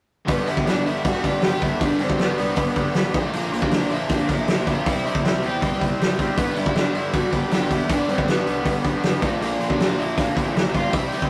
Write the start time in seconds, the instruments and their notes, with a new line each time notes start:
0.27 picked electric bass G1, distorted electric guitar G2 D3 G3 B3 D4, lead electric guitar B3 B4, kick, open hi-hat
0.47 picked electric bass G1, distorted electric guitar G2 D3 G3 B3 D4, lead electric guitar E4 E5, open hi-hat
0.57 kick
0.64 picked electric bass G1, distorted electric guitar G2 D3 G3 B3 D4, snare, open hi-hat
0.68 lead electric guitar D4 D5
0.85 distorted electric guitar G2 D3 G3 B3 D4, lead electric guitar E4 E5, open hi-hat
1.04 picked electric bass G2, distorted electric guitar G2 D3 G3 B3 D4, lead electric guitar F#4 F#5, kick, open hi-hat
1.22 picked electric bass G1, distorted electric guitar G2 D3 G3 B3 D4, lead electric guitar G4 G5, kick, open hi-hat
1.41 picked electric bass G1, distorted electric guitar G2 D3 G3 B3 D4, lead electric guitar G4, snare, open hi-hat
1.46 lead electric guitar G5
1.61 picked electric bass E2, distorted electric guitar G2 D3 G3 B3 D4, lead electric guitar E4 E5, kick, open hi-hat
1.80 picked electric bass G1, distorted electric guitar G2 D3 G3 B3 D4, lead electric guitar D4 D5, kick, open hi-hat
1.99 distorted electric guitar G2 D3 G3 B3 D4, picked electric bass G2, lead electric guitar C4 C5, open hi-hat
2.10 kick
2.18 picked electric bass G1, distorted electric guitar G2 D3 G3 B3 D4, lead electric guitar B3, snare, open hi-hat
2.22 lead electric guitar B4
2.36 picked electric bass C2, distorted electric guitar G2 D3 G3 B3 D4, open hi-hat
2.55 picked electric bass G1, distorted electric guitar G2 D3 G3 B3 D4, kick, open hi-hat
2.74 picked electric bass G1, distorted electric guitar G2 D3 G3 B3 D4, kick, open hi-hat
2.94 picked electric bass A1, distorted electric guitar G2 D3 G3 B3 D4, snare, open hi-hat
3.13 picked electric bass A#1, distorted electric guitar A#2 D3 F3 A#3 D4, lead electric guitar A3 A4, kick, open hi-hat
3.33 picked electric bass A#1, distorted electric guitar A#2 D3 F3 A#3 D4, lead electric guitar A#3 A#4, open hi-hat
3.53 picked electric bass A#1, distorted electric guitar A#2 D3 F3 A#3 D4, open hi-hat
3.62 lead electric guitar D4 D5, kick
3.71 picked electric bass A#1, distorted electric guitar A#2 D3 F3 A#3 D4, snare, open hi-hat
3.90 distorted electric guitar A#2 D3 F3 A#3 D4, lead electric guitar E4 E5, open hi-hat
4.08 distorted electric guitar A#2 D3 F3 A#3 D4, picked electric bass A#2, lead electric guitar D4, kick, open hi-hat
4.12 lead electric guitar D5
4.28 picked electric bass A#1, distorted electric guitar A#2 D3 F3 A#3 D4, kick, open hi-hat
4.32 lead electric guitar E4 E5
4.46 picked electric bass A#1, distorted electric guitar A#2 D3 F3 A#3 D4, snare, open hi-hat
4.66 picked electric bass A#1, distorted electric guitar A#2 D3 F3 A#3 D4, lead electric guitar F4, kick, open hi-hat
4.71 lead electric guitar F5
4.84 picked electric bass C2, distorted electric guitar C3 G3 C4 E4, lead electric guitar E4, kick, open hi-hat
4.90 lead electric guitar E5
5.04 distorted electric guitar C3 G3 C4 E4, picked electric bass C3, lead electric guitar E4, open hi-hat
5.08 lead electric guitar E5
5.15 kick
5.24 picked electric bass C2, distorted electric guitar C3 G3 C4 E4, snare, open hi-hat
5.42 picked electric bass E2, distorted electric guitar C3 G3 C4 E4, lead electric guitar G4 G5, open hi-hat
5.61 picked electric bass C2, distorted electric guitar C3 G3 C4 E4, kick, open hi-hat
5.79 picked electric bass C2, distorted electric guitar C3 G3 C4 E4, kick, open hi-hat
5.99 picked electric bass C2, distorted electric guitar C3 G3 C4 E4, snare, open hi-hat
6.19 picked electric bass G2, distorted electric guitar C3 G3 C4 E4, kick, open hi-hat
6.37 picked electric bass G1, distorted electric guitar G2 D3 G3 B3 D4, lead electric guitar B3 B4, kick, open hi-hat
6.56 picked electric bass G1, distorted electric guitar G2 D3 G3 B3 D4, lead electric guitar E4 E5, open hi-hat
6.66 kick
6.74 picked electric bass G1, distorted electric guitar G2 D3 G3 B3 D4, lead electric guitar D4 D5, snare, open hi-hat
6.93 distorted electric guitar G2 D3 G3 B3 D4, lead electric guitar E4 E5, open hi-hat
7.13 distorted electric guitar G2 D3 G3 B3 D4, picked electric bass G2, lead electric guitar F#4 F#5, kick, open hi-hat
7.32 picked electric bass G1, distorted electric guitar G2 D3 G3 B3 D4, lead electric guitar G4 G5, kick, open hi-hat
7.51 picked electric bass G1, distorted electric guitar G2 D3 G3 B3 D4, lead electric guitar G4 G5, snare, open hi-hat
7.67 picked electric bass E2, overdriven electric guitar G2 D3 G3
7.71 distorted electric guitar G2 D3 G3 B3 D4, lead electric guitar E4 E5, kick, open hi-hat
7.85 overdriven electric guitar G2
7.89 picked electric bass G1, distorted electric guitar G2 D3 G3 B3 D4, lead electric guitar D4 D5, kick, open hi-hat
8.05 overdriven electric guitar G2 D3 G3
8.09 picked electric bass G2, distorted electric guitar G2 D3 G3 B3 D4, lead electric guitar C4 C5, open hi-hat
8.18 kick
8.27 picked electric bass G1, distorted electric guitar G2 D3 G3 B3 D4, lead electric guitar B3 B4, snare, open hi-hat
8.45 picked electric bass C2, distorted electric guitar G2 D3 G3 B3 D4, open hi-hat
8.65 picked electric bass G1, distorted electric guitar G2 D3 G3 B3 D4, kick, open hi-hat
8.85 picked electric bass G1, distorted electric guitar G2 D3 G3 B3 D4, kick, open hi-hat
9.02 picked electric bass G1, distorted electric guitar G2 D3 G3 B3 D4, snare, open hi-hat
9.22 picked electric bass A#1, distorted electric guitar A#2 D3 F3 A#3 D4, lead electric guitar A3 A4, kick, open hi-hat
9.40 picked electric bass A#1, distorted electric guitar A#2 D3 F3 A#3 D4, lead electric guitar A#3 A#4, open hi-hat
9.60 picked electric bass A#1, distorted electric guitar A#2 D3 F3 A#3 D4, open hi-hat
9.70 lead electric guitar D4 D5, kick
9.78 picked electric bass A#1, distorted electric guitar A#2 D3 F3 A#3 D4, snare, open hi-hat
9.97 distorted electric guitar A#2 D3 F3 A#3 D4, lead electric guitar E4 E5, open hi-hat
10.16 distorted electric guitar A#2 D3 F3 A#3 D4, picked electric bass A#2, lead electric guitar D4 D5, kick, open hi-hat
10.35 picked electric bass A#1, distorted electric guitar A#2 D3 F3 A#3 D4, lead electric guitar E4 E5, kick, open hi-hat
10.52 picked electric bass A#1, overdriven electric guitar A#2 A#3
10.56 distorted electric guitar A#2 D3 F3 A#3 D4, snare, open hi-hat
10.71 picked electric bass G2, overdriven electric guitar A#2 F3 A#3, lead electric guitar F4, kick, open hi-hat
10.76 distorted electric guitar A#2 D3 F3 A#3 D4, lead electric guitar F5
10.88 overdriven electric guitar C3 G3 C4
10.93 picked electric bass C2, distorted electric guitar C3 G3 C4 E4, lead electric guitar E4 E5, kick, open hi-hat
11.12 picked electric bass C3, distorted electric guitar C3 G3 C4 E4, lead electric guitar G4 G5, open hi-hat
11.22 kick